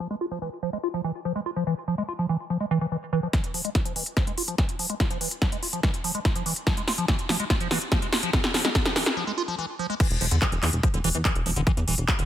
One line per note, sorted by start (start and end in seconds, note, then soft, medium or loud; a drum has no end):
0.00 0.08 F3 medium
0.10 0.16 G#3 medium
0.21 0.26 F4 medium
0.31 0.39 F3 medium
0.42 0.49 E3 medium
0.63 0.70 F3 medium
0.73 0.78 G#3 medium
0.83 0.88 F4 medium
0.94 1.01 F3 medium
1.04 1.12 E3 medium
1.25 1.33 F3 medium
1.35 1.41 G#3 medium
1.46 1.51 F4 medium
1.56 1.64 F3 medium
1.67 1.74 E3 medium
1.88 1.95 F3 medium
1.98 2.03 G#3 medium
2.08 2.13 F4 medium
2.19 2.26 F3 medium
2.29 2.37 E3 medium
2.50 2.58 F3 medium
2.60 2.65 G#3 medium
2.71 2.78 E3 loud
2.81 2.86 E3 medium
2.92 2.97 E3 medium
3.13 3.20 E3 loud
3.23 3.28 F3 medium
3.33 3.41 E3 medium
3.33 kick loud
3.33 snare soft
3.33 closed hi-hat medium
3.44 closed hi-hat medium
3.54 3.62 F3 medium
3.54 open hi-hat loud
3.65 3.70 G#3 medium
3.65 closed hi-hat medium
3.75 3.80 F4 medium
3.75 kick loud
3.75 snare soft
3.75 closed hi-hat medium
3.85 3.93 F3 medium
3.85 closed hi-hat medium
3.96 4.03 E3 medium
3.96 open hi-hat medium
4.06 closed hi-hat medium
4.17 4.24 F3 medium
4.17 kick loud
4.17 snare medium
4.17 closed hi-hat medium
4.27 4.32 G#3 medium
4.27 closed hi-hat medium
4.38 4.43 F4 medium
4.38 open hi-hat loud
4.48 4.56 F3 medium
4.48 closed hi-hat medium
4.58 4.66 E3 medium
4.58 kick loud
4.58 snare medium
4.58 closed hi-hat medium
4.69 closed hi-hat medium
4.79 4.87 F3 medium
4.79 open hi-hat medium
4.90 4.95 G#3 medium
4.90 closed hi-hat medium
5.00 5.05 F4 medium
5.00 kick loud
5.00 snare medium
5.00 closed hi-hat medium
5.10 5.18 F3 medium
5.10 closed hi-hat medium
5.21 5.28 E3 medium
5.21 open hi-hat loud
5.31 closed hi-hat medium
5.42 5.49 F3 medium
5.42 kick loud
5.42 snare medium
5.42 closed hi-hat medium
5.52 5.57 G#3 medium
5.52 closed hi-hat medium
5.63 5.68 F4 medium
5.63 open hi-hat loud
5.73 5.80 F3 medium
5.73 closed hi-hat medium
5.83 5.91 E3 medium
5.83 kick loud
5.83 snare medium
5.83 closed hi-hat medium
5.94 closed hi-hat medium
6.04 6.12 F3 medium
6.04 open hi-hat loud
6.15 6.20 G#3 medium
6.15 closed hi-hat medium
6.25 6.30 F4 medium
6.25 kick loud
6.25 snare medium
6.25 closed hi-hat medium
6.35 6.43 F3 medium
6.35 closed hi-hat medium
6.46 6.53 E3 medium
6.46 open hi-hat loud
6.56 closed hi-hat medium
6.67 6.74 F3 medium
6.67 kick loud
6.67 snare medium
6.67 closed hi-hat medium
6.77 6.82 G#3 medium
6.77 closed hi-hat medium
6.88 6.93 F4 medium
6.88 snare medium
6.88 open hi-hat loud
6.98 7.06 F3 medium
6.98 closed hi-hat medium
7.08 7.16 E3 medium
7.08 kick loud
7.08 snare medium
7.08 closed hi-hat medium
7.19 closed hi-hat medium
7.29 7.37 F3 medium
7.29 snare medium
7.29 open hi-hat loud
7.40 7.45 G#3 medium
7.40 closed hi-hat medium
7.50 7.55 F4 medium
7.50 kick loud
7.50 snare medium
7.50 closed hi-hat medium
7.60 7.68 F3 medium
7.60 closed hi-hat medium
7.71 7.78 E3 medium
7.71 snare medium
7.71 open hi-hat loud
7.81 closed hi-hat medium
7.92 7.99 F3 medium
7.92 kick loud
7.92 snare medium
7.92 closed hi-hat medium
8.02 8.07 G#3 medium
8.02 closed hi-hat medium
8.13 8.18 F4 medium
8.13 snare medium
8.13 open hi-hat loud
8.23 8.31 F3 medium
8.23 closed hi-hat medium
8.33 kick loud
8.33 snare medium
8.33 closed hi-hat medium
8.44 snare medium
8.44 closed hi-hat medium
8.54 8.62 F3 medium
8.54 snare medium
8.54 open hi-hat loud
8.65 8.70 G#3 medium
8.65 snare medium
8.65 closed hi-hat medium
8.75 8.80 F4 medium
8.75 kick loud
8.75 snare loud
8.75 closed hi-hat medium
8.85 8.93 F3 medium
8.85 snare medium
8.85 closed hi-hat medium
8.96 9.03 E3 medium
8.96 snare loud
8.96 open hi-hat loud
9.06 snare medium
9.06 closed hi-hat medium
9.17 9.24 F3 medium
9.27 9.32 G#3 medium
9.38 9.43 F4 medium
9.48 9.56 F3 medium
9.58 9.66 E3 medium
9.79 9.87 F3 medium
9.90 9.95 G#3 medium
10.00 10.08 E3 medium
10.00 kick loud
10.00 closed hi-hat medium
10.00 crash loud
10.10 10.18 E1 medium
10.10 closed hi-hat medium
10.21 10.28 E1 loud
10.21 10.26 F3 medium
10.21 open hi-hat loud
10.31 10.38 E2 loud
10.31 10.36 D3 medium
10.31 closed hi-hat medium
10.42 10.47 E3 loud
10.42 kick loud
10.42 clap loud
10.42 closed hi-hat medium
10.52 10.59 E1 medium
10.52 10.55 E3 medium
10.52 closed hi-hat medium
10.63 10.70 E2 loud
10.63 10.70 E3 medium
10.63 clap medium
10.63 open hi-hat medium
10.73 10.80 E1 medium
10.73 closed hi-hat medium
10.83 10.88 F3 medium
10.83 kick loud
10.83 closed hi-hat medium
10.94 11.01 E1 medium
10.94 10.99 D3 medium
10.94 closed hi-hat medium
11.04 11.11 E1 loud
11.04 11.09 E3 loud
11.04 open hi-hat loud
11.15 11.22 E2 loud
11.15 11.18 E3 medium
11.15 closed hi-hat medium
11.25 11.33 E3 medium
11.25 kick loud
11.25 clap loud
11.25 closed hi-hat medium
11.35 11.43 E1 medium
11.35 closed hi-hat medium
11.46 11.53 E1 medium
11.46 11.51 F3 medium
11.46 open hi-hat medium
11.56 11.63 E1 medium
11.56 11.61 D3 medium
11.56 closed hi-hat medium
11.67 11.72 E3 loud
11.67 kick loud
11.67 closed hi-hat medium
11.77 11.84 E2 medium
11.77 11.80 E3 medium
11.77 closed hi-hat medium
11.88 11.95 E1 loud
11.88 11.95 E3 medium
11.88 open hi-hat loud
11.98 12.05 E1 medium
11.98 closed hi-hat medium
12.08 12.13 F3 medium
12.08 kick loud
12.08 clap loud
12.08 closed hi-hat medium
12.19 12.25 E1 medium
12.19 12.24 D3 medium
12.19 closed hi-hat medium